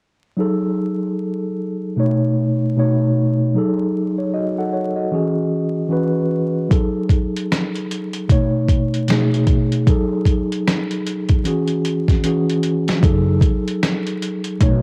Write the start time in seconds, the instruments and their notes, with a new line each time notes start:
0.37 tine electric piano F#3 D#4 G#4 A4
1.96 tine electric piano B2 A3 D#4 C#5
2.76 tine electric piano B2 A3 D#4 C#5
3.55 tine electric piano F#3 D#4 G#4 A4
4.18 tine electric piano C#5
4.34 tine electric piano F#4 D#5
4.58 tine electric piano A4 F#5
4.73 tine electric piano C#5
4.96 tine electric piano F#4 D#5
5.11 tine electric piano E3 C#4 F#4 G#4
5.89 tine electric piano E3 C#4 F#4 B4
6.69 tine electric piano F#3 D#4 G#4 A4, kick, closed hi-hat
7.09 kick, closed hi-hat
7.36 closed hi-hat
7.52 finger snap, snare, closed hi-hat
7.75 closed hi-hat
7.91 closed hi-hat
8.13 closed hi-hat
8.28 tine electric piano B2 A3 D#4 C#5, kick, closed hi-hat
8.69 kick, closed hi-hat
8.94 closed hi-hat
9.08 tine electric piano B2 A3 D#4 G#4, finger snap, snare, closed hi-hat
9.34 closed hi-hat
9.47 kick, closed hi-hat
9.72 closed hi-hat
9.86 tine electric piano F#3 D#4 G#4 A4, kick, closed hi-hat
10.25 kick, closed hi-hat
10.52 closed hi-hat
10.68 finger snap, snare, closed hi-hat
10.91 closed hi-hat
11.07 closed hi-hat
11.29 kick, closed hi-hat
11.44 tine electric piano E3 C#4 F#4 G#4, closed hi-hat
11.68 closed hi-hat
11.85 closed hi-hat
12.08 kick, snare, closed hi-hat
12.23 tine electric piano E3 C#4 F#4 G#4, closed hi-hat
12.50 closed hi-hat
12.63 closed hi-hat
12.88 snare, closed hi-hat
13.00 upright bass F#1, tine electric piano F#3 D#4 G#4 A4, kick, closed hi-hat
13.41 kick, closed hi-hat
13.68 closed hi-hat
13.83 finger snap, snare, closed hi-hat
14.07 closed hi-hat
14.22 closed hi-hat
14.44 closed hi-hat
14.60 upright bass B1, tine electric piano B2 A3 D#4 C#5, kick, closed hi-hat